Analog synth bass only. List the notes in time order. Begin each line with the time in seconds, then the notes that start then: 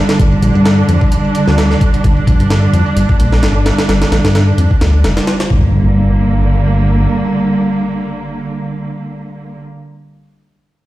0.19 G1
0.43 A#1
0.55 G2
0.89 F2
1.47 D2
2.04 G1
2.27 A#1
2.40 G2
2.73 F2
2.96 G1
3.19 A#1
3.43 G1
3.89 G1
4.12 A#1
4.24 G2
4.58 F2
4.81 D2
5.04 F1
5.50 G1